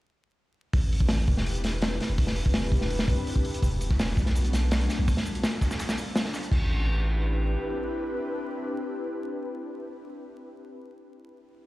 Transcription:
0.73 1.26 A1 loud
0.73 kick loud
0.73 open hi-hat medium
0.93 open hi-hat medium
1.00 kick loud
1.09 snare loud
1.09 open hi-hat medium
1.28 1.99 E1 loud
1.28 kick loud
1.28 open hi-hat medium
1.37 snare soft
1.46 open hi-hat medium
1.55 closed hi-hat soft
1.64 snare soft
1.64 open hi-hat medium
1.82 snare loud
1.82 open hi-hat medium
2.00 snare soft
2.00 open hi-hat medium
2.09 2.71 E1 medium
2.18 kick loud
2.18 open hi-hat medium
2.27 snare soft
2.36 open hi-hat medium
2.46 kick loud
2.54 snare loud
2.54 open hi-hat medium
2.72 3.07 E1 medium
2.72 kick loud
2.72 open hi-hat medium
2.81 snare soft
2.90 open hi-hat medium
2.99 snare medium
3.08 3.17 C2 loud
3.08 kick medium
3.08 open hi-hat medium
3.27 open hi-hat medium
3.36 kick medium
3.45 open hi-hat medium
3.54 closed hi-hat soft
3.62 4.15 E1 loud
3.62 kick loud
3.62 open hi-hat medium
3.62 shaker medium
3.81 open hi-hat medium
3.81 shaker medium
3.91 kick loud
3.91 snare medium
3.99 snare loud
3.99 open hi-hat medium
3.99 shaker medium
4.17 4.88 B1 loud
4.17 kick loud
4.17 snare soft
4.17 open hi-hat medium
4.17 shaker medium
4.26 snare soft
4.26 closed hi-hat soft
4.35 open hi-hat medium
4.35 shaker loud
4.44 closed hi-hat soft
4.53 snare soft
4.53 open hi-hat medium
4.53 shaker medium
4.71 snare loud
4.71 open hi-hat medium
4.71 shaker medium
4.81 closed hi-hat soft
4.89 snare soft
4.89 open hi-hat medium
4.89 shaker medium
4.99 5.07 B1 medium
5.08 kick loud
5.08 open hi-hat medium
5.08 shaker medium
5.17 snare medium
5.26 shaker medium
5.35 closed hi-hat soft
5.43 snare loud
5.43 open hi-hat medium
5.43 shaker medium
5.61 kick medium
5.61 snare loud
5.61 open hi-hat medium
5.61 shaker medium
5.71 snare loud
5.71 snare soft
5.71 shaker medium
5.79 snare loud
5.79 open hi-hat medium
5.79 shaker medium
5.89 snare medium
5.89 snare loud
5.89 shaker medium
5.97 open hi-hat medium
5.97 shaker medium
6.16 snare loud
6.16 open hi-hat medium
6.16 shaker medium
6.25 snare soft
6.25 snare medium
6.34 snare loud
6.34 open hi-hat medium
6.34 shaker medium
6.43 closed hi-hat soft
6.52 7.56 A1 loud
6.52 10.17 C4 medium
6.52 10.17 D4 medium
6.52 10.17 E4 medium
6.52 10.17 G4 medium
6.52 10.17 B4 loud
6.52 kick loud
6.52 crash medium

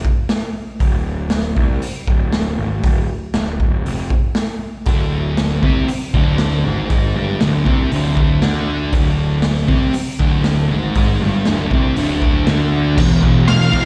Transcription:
0.05 kick medium
0.29 snare loud
0.29 open hi-hat soft
0.80 1.53 D1 medium
0.80 kick loud
0.80 open hi-hat soft
1.30 snare loud
1.30 open hi-hat soft
1.57 1.81 C2 medium
1.57 kick medium
1.82 muted picked electric bass stroke soft
1.82 open hi-hat soft
2.07 2.55 D1 medium
2.07 kick medium
2.33 snare loud
2.33 open hi-hat soft
2.58 2.82 G#1 medium
2.83 3.07 D1 medium
2.83 kick loud
2.83 open hi-hat soft
3.34 3.58 D1 loud
3.34 snare loud
3.34 open hi-hat soft
3.60 3.84 D1 medium
3.60 kick medium
3.85 4.09 F1 medium
3.85 open hi-hat soft
4.10 kick medium
4.35 snare loud
4.35 open hi-hat soft
4.86 5.59 D1 medium
4.86 5.62 D2 medium
4.86 5.62 D3 medium
4.86 kick loud
4.86 open hi-hat medium
5.37 snare loud
5.37 open hi-hat medium
5.63 5.87 C2 medium
5.63 5.88 C3 medium
5.63 5.88 C4 loud
5.63 kick medium
5.88 muted picked electric bass stroke soft
5.88 muted distorted electric guitar stroke soft
5.88 open hi-hat soft
6.14 6.61 D1 medium
6.14 6.64 D2 medium
6.14 6.64 D3 medium
6.14 kick medium
6.38 snare loud
6.38 open hi-hat soft
6.65 6.89 G#1 medium
6.65 6.89 G#2 medium
6.65 6.89 G#3 medium
6.90 7.13 G#1 medium
6.90 7.14 G#2 medium
6.90 7.15 G#3 medium
6.90 kick loud
6.90 open hi-hat soft
7.16 7.39 G1 medium
7.16 7.40 G2 medium
7.16 7.40 G3 medium
7.41 7.64 D1 loud
7.41 7.65 D2 medium
7.41 7.66 D3 medium
7.41 snare loud
7.41 open hi-hat soft
7.66 7.90 C2 medium
7.66 7.91 C3 medium
7.66 7.91 C4 medium
7.66 kick medium
7.92 8.39 D1 medium
7.92 8.41 D2 medium
7.92 8.41 D3 medium
7.92 open hi-hat soft
8.17 kick medium
8.42 8.89 D2 loud
8.42 8.92 D3 medium
8.42 8.92 D4 medium
8.42 snare loud
8.42 open hi-hat soft
8.92 9.65 D1 medium
8.92 9.68 D2 medium
8.92 9.68 D3 loud
8.92 kick loud
8.92 open hi-hat soft
9.42 snare loud
9.42 open hi-hat medium
9.68 9.92 C2 medium
9.68 9.93 C3 medium
9.68 9.93 C4 medium
9.68 kick medium
9.93 muted picked electric bass stroke soft
9.93 muted distorted electric guitar stroke medium
9.93 open hi-hat medium
10.19 10.67 D1 medium
10.19 10.69 D2 medium
10.19 10.70 D3 loud
10.19 kick medium
10.44 snare loud
10.44 open hi-hat medium
10.70 10.93 G#1 loud
10.70 10.94 G#2 medium
10.70 10.95 G#3 loud
10.95 11.19 G#1 medium
10.95 11.20 G#2 medium
10.95 11.21 G#3 medium
10.95 kick loud
10.95 open hi-hat soft
11.21 11.44 G1 medium
11.21 11.45 G2 medium
11.21 11.46 G3 loud
11.46 11.69 D1 loud
11.46 11.71 D2 medium
11.46 11.71 D3 medium
11.46 snare loud
11.46 open hi-hat soft
11.71 11.95 C2 medium
11.71 11.96 C3 medium
11.71 11.96 C4 medium
11.71 kick medium
11.96 12.44 D1 medium
11.96 12.46 D2 medium
11.96 12.47 D3 medium
11.96 open hi-hat soft
12.22 kick medium
12.47 12.99 D2 loud
12.47 12.97 D3 medium
12.47 12.98 D4 loud
12.47 snare loud
12.47 open hi-hat soft
12.96 13.21 E1 loud
12.96 13.46 E2 loud
12.96 13.24 B2 medium
12.96 13.21 E3 loud
12.96 kick loud
12.96 crash loud
13.21 13.47 E1 medium
13.21 13.48 B2 medium
13.21 13.50 E3 medium
13.21 kick medium
13.47 13.72 E1 loud
13.47 13.85 E2 medium
13.47 13.73 B2 medium
13.47 13.71 E3 medium
13.47 13.85 F5 loud
13.47 snare loud
13.47 open hi-hat medium
13.71 13.85 E1 medium
13.71 13.85 B2 medium
13.71 13.85 E3 medium
13.71 kick medium

